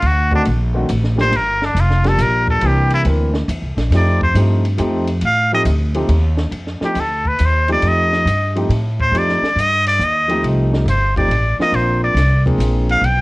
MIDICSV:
0, 0, Header, 1, 6, 480
1, 0, Start_track
1, 0, Tempo, 433839
1, 22, Time_signature, 3, 2, 24, 8
1, 14619, End_track
2, 0, Start_track
2, 0, Title_t, "Muted trumpet"
2, 0, Program_c, 0, 59
2, 72, Note_on_c, 0, 66, 109
2, 367, Note_off_c, 0, 66, 0
2, 385, Note_on_c, 0, 62, 102
2, 468, Note_off_c, 0, 62, 0
2, 1339, Note_on_c, 0, 72, 109
2, 1508, Note_on_c, 0, 70, 100
2, 1524, Note_off_c, 0, 72, 0
2, 1828, Note_on_c, 0, 62, 88
2, 1845, Note_off_c, 0, 70, 0
2, 1995, Note_on_c, 0, 65, 94
2, 2011, Note_off_c, 0, 62, 0
2, 2298, Note_on_c, 0, 69, 107
2, 2314, Note_off_c, 0, 65, 0
2, 2452, Note_on_c, 0, 70, 104
2, 2469, Note_off_c, 0, 69, 0
2, 2758, Note_off_c, 0, 70, 0
2, 2768, Note_on_c, 0, 69, 104
2, 2946, Note_on_c, 0, 67, 92
2, 2963, Note_off_c, 0, 69, 0
2, 3245, Note_off_c, 0, 67, 0
2, 3253, Note_on_c, 0, 64, 110
2, 3340, Note_off_c, 0, 64, 0
2, 4384, Note_on_c, 0, 74, 86
2, 4663, Note_off_c, 0, 74, 0
2, 4682, Note_on_c, 0, 72, 100
2, 4823, Note_off_c, 0, 72, 0
2, 5817, Note_on_c, 0, 77, 113
2, 6099, Note_off_c, 0, 77, 0
2, 6130, Note_on_c, 0, 75, 104
2, 6218, Note_off_c, 0, 75, 0
2, 7572, Note_on_c, 0, 67, 92
2, 7741, Note_on_c, 0, 69, 86
2, 7758, Note_off_c, 0, 67, 0
2, 8049, Note_on_c, 0, 71, 93
2, 8066, Note_off_c, 0, 69, 0
2, 8243, Note_on_c, 0, 72, 93
2, 8260, Note_off_c, 0, 71, 0
2, 8533, Note_off_c, 0, 72, 0
2, 8542, Note_on_c, 0, 74, 106
2, 8715, Note_on_c, 0, 75, 92
2, 8731, Note_off_c, 0, 74, 0
2, 9489, Note_off_c, 0, 75, 0
2, 9974, Note_on_c, 0, 72, 104
2, 10155, Note_on_c, 0, 74, 95
2, 10171, Note_off_c, 0, 72, 0
2, 10627, Note_on_c, 0, 75, 115
2, 10644, Note_off_c, 0, 74, 0
2, 10922, Note_off_c, 0, 75, 0
2, 10928, Note_on_c, 0, 74, 109
2, 11111, Note_on_c, 0, 75, 101
2, 11128, Note_off_c, 0, 74, 0
2, 11566, Note_off_c, 0, 75, 0
2, 12056, Note_on_c, 0, 72, 95
2, 12337, Note_off_c, 0, 72, 0
2, 12359, Note_on_c, 0, 74, 94
2, 12796, Note_off_c, 0, 74, 0
2, 12853, Note_on_c, 0, 75, 115
2, 13000, Note_on_c, 0, 72, 93
2, 13017, Note_off_c, 0, 75, 0
2, 13310, Note_off_c, 0, 72, 0
2, 13315, Note_on_c, 0, 74, 97
2, 13754, Note_off_c, 0, 74, 0
2, 14281, Note_on_c, 0, 77, 109
2, 14438, Note_on_c, 0, 79, 95
2, 14454, Note_off_c, 0, 77, 0
2, 14619, Note_off_c, 0, 79, 0
2, 14619, End_track
3, 0, Start_track
3, 0, Title_t, "Grand piano"
3, 0, Program_c, 1, 0
3, 349, Note_on_c, 1, 51, 70
3, 353, Note_on_c, 1, 57, 62
3, 353, Note_on_c, 1, 60, 66
3, 360, Note_on_c, 1, 62, 66
3, 367, Note_on_c, 1, 66, 80
3, 490, Note_off_c, 1, 51, 0
3, 492, Note_off_c, 1, 57, 0
3, 492, Note_off_c, 1, 60, 0
3, 496, Note_off_c, 1, 62, 0
3, 499, Note_off_c, 1, 66, 0
3, 820, Note_on_c, 1, 60, 70
3, 821, Note_on_c, 1, 51, 74
3, 821, Note_on_c, 1, 57, 73
3, 831, Note_on_c, 1, 62, 66
3, 838, Note_on_c, 1, 66, 82
3, 966, Note_off_c, 1, 51, 0
3, 966, Note_off_c, 1, 57, 0
3, 966, Note_off_c, 1, 60, 0
3, 971, Note_off_c, 1, 62, 0
3, 975, Note_off_c, 1, 66, 0
3, 1285, Note_on_c, 1, 53, 69
3, 1290, Note_on_c, 1, 58, 62
3, 1291, Note_on_c, 1, 55, 68
3, 1296, Note_on_c, 1, 62, 69
3, 1303, Note_on_c, 1, 67, 85
3, 1438, Note_off_c, 1, 53, 0
3, 1441, Note_off_c, 1, 55, 0
3, 1441, Note_off_c, 1, 58, 0
3, 1444, Note_off_c, 1, 62, 0
3, 1447, Note_off_c, 1, 67, 0
3, 2250, Note_on_c, 1, 53, 65
3, 2255, Note_on_c, 1, 55, 61
3, 2257, Note_on_c, 1, 58, 64
3, 2259, Note_on_c, 1, 62, 60
3, 2267, Note_on_c, 1, 67, 79
3, 2865, Note_off_c, 1, 53, 0
3, 2867, Note_off_c, 1, 55, 0
3, 2869, Note_off_c, 1, 58, 0
3, 2870, Note_off_c, 1, 62, 0
3, 2874, Note_off_c, 1, 67, 0
3, 2898, Note_on_c, 1, 52, 75
3, 2905, Note_on_c, 1, 58, 62
3, 2905, Note_on_c, 1, 62, 60
3, 2911, Note_on_c, 1, 60, 61
3, 2918, Note_on_c, 1, 67, 78
3, 3358, Note_off_c, 1, 58, 0
3, 3361, Note_off_c, 1, 52, 0
3, 3365, Note_off_c, 1, 60, 0
3, 3367, Note_off_c, 1, 62, 0
3, 3375, Note_off_c, 1, 67, 0
3, 3375, Note_on_c, 1, 58, 62
3, 3377, Note_on_c, 1, 52, 70
3, 3381, Note_on_c, 1, 60, 65
3, 3384, Note_on_c, 1, 62, 63
3, 3393, Note_on_c, 1, 70, 74
3, 3667, Note_off_c, 1, 58, 0
3, 3668, Note_off_c, 1, 52, 0
3, 3670, Note_off_c, 1, 60, 0
3, 3672, Note_off_c, 1, 62, 0
3, 3676, Note_off_c, 1, 70, 0
3, 4343, Note_on_c, 1, 53, 70
3, 4349, Note_on_c, 1, 57, 61
3, 4357, Note_on_c, 1, 60, 66
3, 4359, Note_on_c, 1, 63, 64
3, 4361, Note_on_c, 1, 67, 81
3, 4631, Note_off_c, 1, 53, 0
3, 4634, Note_off_c, 1, 57, 0
3, 4638, Note_off_c, 1, 60, 0
3, 4639, Note_off_c, 1, 63, 0
3, 4640, Note_off_c, 1, 67, 0
3, 4809, Note_on_c, 1, 53, 82
3, 4819, Note_on_c, 1, 57, 72
3, 4821, Note_on_c, 1, 60, 77
3, 4821, Note_on_c, 1, 63, 72
3, 4824, Note_on_c, 1, 67, 88
3, 5104, Note_off_c, 1, 53, 0
3, 5109, Note_off_c, 1, 57, 0
3, 5110, Note_off_c, 1, 60, 0
3, 5110, Note_off_c, 1, 63, 0
3, 5112, Note_off_c, 1, 67, 0
3, 5287, Note_on_c, 1, 53, 96
3, 5297, Note_on_c, 1, 57, 78
3, 5299, Note_on_c, 1, 60, 89
3, 5301, Note_on_c, 1, 63, 84
3, 5306, Note_on_c, 1, 67, 100
3, 5583, Note_off_c, 1, 53, 0
3, 5588, Note_off_c, 1, 57, 0
3, 5589, Note_off_c, 1, 60, 0
3, 5590, Note_off_c, 1, 63, 0
3, 5593, Note_off_c, 1, 67, 0
3, 6109, Note_on_c, 1, 53, 83
3, 6112, Note_on_c, 1, 57, 78
3, 6116, Note_on_c, 1, 63, 70
3, 6121, Note_on_c, 1, 67, 96
3, 6122, Note_on_c, 1, 60, 75
3, 6251, Note_off_c, 1, 53, 0
3, 6252, Note_off_c, 1, 57, 0
3, 6254, Note_off_c, 1, 63, 0
3, 6256, Note_off_c, 1, 67, 0
3, 6257, Note_off_c, 1, 60, 0
3, 6578, Note_on_c, 1, 53, 79
3, 6581, Note_on_c, 1, 57, 76
3, 6584, Note_on_c, 1, 60, 79
3, 6587, Note_on_c, 1, 63, 67
3, 6590, Note_on_c, 1, 67, 96
3, 6725, Note_off_c, 1, 53, 0
3, 6726, Note_off_c, 1, 57, 0
3, 6728, Note_off_c, 1, 60, 0
3, 6729, Note_off_c, 1, 63, 0
3, 6731, Note_off_c, 1, 67, 0
3, 7545, Note_on_c, 1, 57, 59
3, 7547, Note_on_c, 1, 53, 72
3, 7554, Note_on_c, 1, 60, 62
3, 7557, Note_on_c, 1, 63, 60
3, 7565, Note_on_c, 1, 67, 76
3, 7688, Note_off_c, 1, 57, 0
3, 7689, Note_off_c, 1, 53, 0
3, 7693, Note_off_c, 1, 60, 0
3, 7694, Note_off_c, 1, 63, 0
3, 7698, Note_off_c, 1, 67, 0
3, 8501, Note_on_c, 1, 57, 68
3, 8504, Note_on_c, 1, 53, 72
3, 8507, Note_on_c, 1, 60, 64
3, 8508, Note_on_c, 1, 63, 67
3, 8510, Note_on_c, 1, 67, 81
3, 9110, Note_off_c, 1, 57, 0
3, 9112, Note_off_c, 1, 53, 0
3, 9113, Note_off_c, 1, 60, 0
3, 9114, Note_off_c, 1, 63, 0
3, 9114, Note_off_c, 1, 67, 0
3, 9465, Note_on_c, 1, 53, 77
3, 9468, Note_on_c, 1, 57, 73
3, 9473, Note_on_c, 1, 60, 70
3, 9478, Note_on_c, 1, 63, 70
3, 9483, Note_on_c, 1, 67, 93
3, 9608, Note_off_c, 1, 53, 0
3, 9610, Note_off_c, 1, 57, 0
3, 9612, Note_off_c, 1, 60, 0
3, 9615, Note_off_c, 1, 63, 0
3, 9617, Note_off_c, 1, 67, 0
3, 10102, Note_on_c, 1, 53, 72
3, 10106, Note_on_c, 1, 57, 64
3, 10114, Note_on_c, 1, 60, 62
3, 10114, Note_on_c, 1, 63, 64
3, 10118, Note_on_c, 1, 67, 79
3, 10390, Note_off_c, 1, 53, 0
3, 10392, Note_off_c, 1, 57, 0
3, 10396, Note_off_c, 1, 60, 0
3, 10396, Note_off_c, 1, 63, 0
3, 10398, Note_off_c, 1, 67, 0
3, 11374, Note_on_c, 1, 53, 90
3, 11382, Note_on_c, 1, 57, 83
3, 11390, Note_on_c, 1, 60, 71
3, 11395, Note_on_c, 1, 63, 79
3, 11396, Note_on_c, 1, 67, 86
3, 11985, Note_off_c, 1, 53, 0
3, 11990, Note_off_c, 1, 57, 0
3, 11994, Note_off_c, 1, 60, 0
3, 11996, Note_off_c, 1, 63, 0
3, 11996, Note_off_c, 1, 67, 0
3, 12350, Note_on_c, 1, 53, 68
3, 12359, Note_on_c, 1, 60, 59
3, 12360, Note_on_c, 1, 57, 60
3, 12364, Note_on_c, 1, 63, 63
3, 12369, Note_on_c, 1, 67, 74
3, 12490, Note_off_c, 1, 53, 0
3, 12494, Note_off_c, 1, 57, 0
3, 12494, Note_off_c, 1, 60, 0
3, 12496, Note_off_c, 1, 63, 0
3, 12499, Note_off_c, 1, 67, 0
3, 12827, Note_on_c, 1, 53, 76
3, 12840, Note_on_c, 1, 60, 65
3, 12841, Note_on_c, 1, 58, 68
3, 12843, Note_on_c, 1, 62, 65
3, 12848, Note_on_c, 1, 65, 85
3, 13431, Note_off_c, 1, 53, 0
3, 13438, Note_off_c, 1, 58, 0
3, 13438, Note_off_c, 1, 60, 0
3, 13439, Note_off_c, 1, 62, 0
3, 13442, Note_off_c, 1, 65, 0
3, 13781, Note_on_c, 1, 53, 80
3, 13781, Note_on_c, 1, 58, 74
3, 13782, Note_on_c, 1, 60, 71
3, 13791, Note_on_c, 1, 62, 70
3, 13795, Note_on_c, 1, 68, 86
3, 14388, Note_off_c, 1, 53, 0
3, 14388, Note_off_c, 1, 58, 0
3, 14388, Note_off_c, 1, 60, 0
3, 14393, Note_off_c, 1, 62, 0
3, 14395, Note_off_c, 1, 68, 0
3, 14619, End_track
4, 0, Start_track
4, 0, Title_t, "Upright bass"
4, 0, Program_c, 2, 32
4, 28, Note_on_c, 2, 38, 91
4, 491, Note_off_c, 2, 38, 0
4, 518, Note_on_c, 2, 34, 102
4, 976, Note_off_c, 2, 34, 0
4, 991, Note_on_c, 2, 33, 104
4, 1453, Note_off_c, 2, 33, 0
4, 1465, Note_on_c, 2, 31, 88
4, 1927, Note_off_c, 2, 31, 0
4, 1934, Note_on_c, 2, 29, 92
4, 2404, Note_off_c, 2, 29, 0
4, 2415, Note_on_c, 2, 34, 96
4, 2885, Note_off_c, 2, 34, 0
4, 2899, Note_on_c, 2, 36, 87
4, 3367, Note_off_c, 2, 36, 0
4, 3378, Note_on_c, 2, 38, 96
4, 3847, Note_off_c, 2, 38, 0
4, 3852, Note_on_c, 2, 40, 104
4, 4005, Note_on_c, 2, 36, 59
4, 4021, Note_off_c, 2, 40, 0
4, 4161, Note_off_c, 2, 36, 0
4, 4167, Note_on_c, 2, 34, 73
4, 4314, Note_off_c, 2, 34, 0
4, 4320, Note_on_c, 2, 41, 98
4, 4797, Note_off_c, 2, 41, 0
4, 4808, Note_on_c, 2, 43, 96
4, 5281, Note_off_c, 2, 43, 0
4, 5299, Note_on_c, 2, 41, 107
4, 5767, Note_off_c, 2, 41, 0
4, 5778, Note_on_c, 2, 45, 94
4, 6246, Note_off_c, 2, 45, 0
4, 6252, Note_on_c, 2, 38, 102
4, 6723, Note_off_c, 2, 38, 0
4, 6735, Note_on_c, 2, 39, 107
4, 7200, Note_off_c, 2, 39, 0
4, 7206, Note_on_c, 2, 41, 90
4, 7512, Note_off_c, 2, 41, 0
4, 7693, Note_on_c, 2, 38, 89
4, 8163, Note_off_c, 2, 38, 0
4, 8186, Note_on_c, 2, 39, 100
4, 8646, Note_off_c, 2, 39, 0
4, 8653, Note_on_c, 2, 41, 87
4, 9123, Note_off_c, 2, 41, 0
4, 9135, Note_on_c, 2, 43, 94
4, 9604, Note_off_c, 2, 43, 0
4, 9617, Note_on_c, 2, 45, 99
4, 10080, Note_off_c, 2, 45, 0
4, 10086, Note_on_c, 2, 41, 93
4, 10391, Note_off_c, 2, 41, 0
4, 10575, Note_on_c, 2, 43, 93
4, 11044, Note_off_c, 2, 43, 0
4, 11059, Note_on_c, 2, 39, 100
4, 11526, Note_off_c, 2, 39, 0
4, 11540, Note_on_c, 2, 36, 84
4, 12006, Note_off_c, 2, 36, 0
4, 12012, Note_on_c, 2, 31, 91
4, 12476, Note_off_c, 2, 31, 0
4, 12482, Note_on_c, 2, 33, 91
4, 12788, Note_off_c, 2, 33, 0
4, 12969, Note_on_c, 2, 34, 91
4, 13427, Note_off_c, 2, 34, 0
4, 13433, Note_on_c, 2, 36, 93
4, 13911, Note_off_c, 2, 36, 0
4, 13918, Note_on_c, 2, 34, 93
4, 14388, Note_off_c, 2, 34, 0
4, 14395, Note_on_c, 2, 35, 88
4, 14619, Note_off_c, 2, 35, 0
4, 14619, End_track
5, 0, Start_track
5, 0, Title_t, "Muted upright bass strokes"
5, 7529, Note_on_c, 9, 29, 39
5, 7640, Note_off_c, 9, 29, 0
5, 10419, Note_on_c, 9, 29, 39
5, 10530, Note_off_c, 9, 29, 0
5, 14619, End_track
6, 0, Start_track
6, 0, Title_t, "Drums"
6, 21, Note_on_c, 9, 51, 70
6, 131, Note_off_c, 9, 51, 0
6, 345, Note_on_c, 9, 36, 56
6, 456, Note_off_c, 9, 36, 0
6, 498, Note_on_c, 9, 51, 67
6, 609, Note_off_c, 9, 51, 0
6, 981, Note_on_c, 9, 44, 56
6, 981, Note_on_c, 9, 51, 78
6, 1091, Note_off_c, 9, 44, 0
6, 1091, Note_off_c, 9, 51, 0
6, 1150, Note_on_c, 9, 38, 32
6, 1260, Note_off_c, 9, 38, 0
6, 1308, Note_on_c, 9, 38, 52
6, 1419, Note_off_c, 9, 38, 0
6, 1468, Note_on_c, 9, 51, 73
6, 1578, Note_off_c, 9, 51, 0
6, 1793, Note_on_c, 9, 38, 42
6, 1904, Note_off_c, 9, 38, 0
6, 1954, Note_on_c, 9, 44, 65
6, 1954, Note_on_c, 9, 51, 83
6, 2064, Note_off_c, 9, 44, 0
6, 2064, Note_off_c, 9, 51, 0
6, 2108, Note_on_c, 9, 38, 32
6, 2219, Note_off_c, 9, 38, 0
6, 2259, Note_on_c, 9, 51, 49
6, 2269, Note_on_c, 9, 38, 48
6, 2370, Note_off_c, 9, 51, 0
6, 2380, Note_off_c, 9, 38, 0
6, 2418, Note_on_c, 9, 44, 74
6, 2418, Note_on_c, 9, 51, 76
6, 2529, Note_off_c, 9, 44, 0
6, 2529, Note_off_c, 9, 51, 0
6, 2738, Note_on_c, 9, 36, 66
6, 2849, Note_off_c, 9, 36, 0
6, 2889, Note_on_c, 9, 51, 74
6, 3000, Note_off_c, 9, 51, 0
6, 3213, Note_on_c, 9, 51, 50
6, 3324, Note_off_c, 9, 51, 0
6, 3372, Note_on_c, 9, 51, 73
6, 3483, Note_off_c, 9, 51, 0
6, 3693, Note_on_c, 9, 38, 54
6, 3804, Note_off_c, 9, 38, 0
6, 3860, Note_on_c, 9, 44, 68
6, 3860, Note_on_c, 9, 51, 82
6, 3971, Note_off_c, 9, 44, 0
6, 3971, Note_off_c, 9, 51, 0
6, 4179, Note_on_c, 9, 51, 52
6, 4181, Note_on_c, 9, 38, 47
6, 4290, Note_off_c, 9, 51, 0
6, 4292, Note_off_c, 9, 38, 0
6, 4337, Note_on_c, 9, 51, 83
6, 4339, Note_on_c, 9, 38, 41
6, 4447, Note_off_c, 9, 51, 0
6, 4450, Note_off_c, 9, 38, 0
6, 4659, Note_on_c, 9, 36, 65
6, 4770, Note_off_c, 9, 36, 0
6, 4816, Note_on_c, 9, 44, 65
6, 4816, Note_on_c, 9, 51, 80
6, 4927, Note_off_c, 9, 44, 0
6, 4927, Note_off_c, 9, 51, 0
6, 5144, Note_on_c, 9, 51, 54
6, 5255, Note_off_c, 9, 51, 0
6, 5291, Note_on_c, 9, 44, 67
6, 5291, Note_on_c, 9, 51, 72
6, 5402, Note_off_c, 9, 44, 0
6, 5402, Note_off_c, 9, 51, 0
6, 5614, Note_on_c, 9, 51, 60
6, 5724, Note_off_c, 9, 51, 0
6, 5765, Note_on_c, 9, 51, 75
6, 5876, Note_off_c, 9, 51, 0
6, 6251, Note_on_c, 9, 44, 60
6, 6251, Note_on_c, 9, 51, 92
6, 6362, Note_off_c, 9, 44, 0
6, 6362, Note_off_c, 9, 51, 0
6, 6575, Note_on_c, 9, 51, 52
6, 6686, Note_off_c, 9, 51, 0
6, 6733, Note_on_c, 9, 51, 75
6, 6844, Note_off_c, 9, 51, 0
6, 7052, Note_on_c, 9, 38, 51
6, 7162, Note_off_c, 9, 38, 0
6, 7213, Note_on_c, 9, 51, 65
6, 7323, Note_off_c, 9, 51, 0
6, 7377, Note_on_c, 9, 38, 27
6, 7488, Note_off_c, 9, 38, 0
6, 7536, Note_on_c, 9, 38, 46
6, 7647, Note_off_c, 9, 38, 0
6, 7688, Note_on_c, 9, 44, 66
6, 7688, Note_on_c, 9, 51, 83
6, 7799, Note_off_c, 9, 44, 0
6, 7799, Note_off_c, 9, 51, 0
6, 8020, Note_on_c, 9, 36, 49
6, 8131, Note_off_c, 9, 36, 0
6, 8170, Note_on_c, 9, 44, 70
6, 8170, Note_on_c, 9, 51, 77
6, 8281, Note_off_c, 9, 44, 0
6, 8281, Note_off_c, 9, 51, 0
6, 8498, Note_on_c, 9, 51, 50
6, 8608, Note_off_c, 9, 51, 0
6, 8653, Note_on_c, 9, 51, 70
6, 8764, Note_off_c, 9, 51, 0
6, 8991, Note_on_c, 9, 38, 34
6, 9101, Note_off_c, 9, 38, 0
6, 9153, Note_on_c, 9, 44, 62
6, 9153, Note_on_c, 9, 51, 78
6, 9264, Note_off_c, 9, 44, 0
6, 9264, Note_off_c, 9, 51, 0
6, 9475, Note_on_c, 9, 51, 47
6, 9586, Note_off_c, 9, 51, 0
6, 9629, Note_on_c, 9, 51, 71
6, 9739, Note_off_c, 9, 51, 0
6, 9953, Note_on_c, 9, 36, 50
6, 10064, Note_off_c, 9, 36, 0
6, 10120, Note_on_c, 9, 51, 67
6, 10230, Note_off_c, 9, 51, 0
6, 10277, Note_on_c, 9, 38, 29
6, 10387, Note_off_c, 9, 38, 0
6, 10442, Note_on_c, 9, 38, 50
6, 10553, Note_off_c, 9, 38, 0
6, 10606, Note_on_c, 9, 44, 73
6, 10606, Note_on_c, 9, 51, 77
6, 10716, Note_off_c, 9, 44, 0
6, 10716, Note_off_c, 9, 51, 0
6, 10915, Note_on_c, 9, 51, 74
6, 11026, Note_off_c, 9, 51, 0
6, 11071, Note_on_c, 9, 44, 62
6, 11182, Note_off_c, 9, 44, 0
6, 11389, Note_on_c, 9, 51, 51
6, 11500, Note_off_c, 9, 51, 0
6, 11550, Note_on_c, 9, 51, 69
6, 11661, Note_off_c, 9, 51, 0
6, 11875, Note_on_c, 9, 38, 51
6, 11986, Note_off_c, 9, 38, 0
6, 12035, Note_on_c, 9, 44, 62
6, 12035, Note_on_c, 9, 51, 77
6, 12146, Note_off_c, 9, 44, 0
6, 12146, Note_off_c, 9, 51, 0
6, 12352, Note_on_c, 9, 36, 50
6, 12361, Note_on_c, 9, 51, 50
6, 12462, Note_off_c, 9, 36, 0
6, 12472, Note_off_c, 9, 51, 0
6, 12514, Note_on_c, 9, 51, 67
6, 12625, Note_off_c, 9, 51, 0
6, 12836, Note_on_c, 9, 38, 54
6, 12946, Note_off_c, 9, 38, 0
6, 12985, Note_on_c, 9, 51, 69
6, 13096, Note_off_c, 9, 51, 0
6, 13459, Note_on_c, 9, 44, 67
6, 13459, Note_on_c, 9, 51, 82
6, 13462, Note_on_c, 9, 38, 43
6, 13570, Note_off_c, 9, 44, 0
6, 13570, Note_off_c, 9, 51, 0
6, 13572, Note_off_c, 9, 38, 0
6, 13784, Note_on_c, 9, 36, 54
6, 13795, Note_on_c, 9, 51, 50
6, 13895, Note_off_c, 9, 36, 0
6, 13905, Note_off_c, 9, 51, 0
6, 13941, Note_on_c, 9, 44, 62
6, 13941, Note_on_c, 9, 51, 82
6, 14052, Note_off_c, 9, 44, 0
6, 14052, Note_off_c, 9, 51, 0
6, 14265, Note_on_c, 9, 51, 51
6, 14376, Note_off_c, 9, 51, 0
6, 14427, Note_on_c, 9, 51, 67
6, 14538, Note_off_c, 9, 51, 0
6, 14619, End_track
0, 0, End_of_file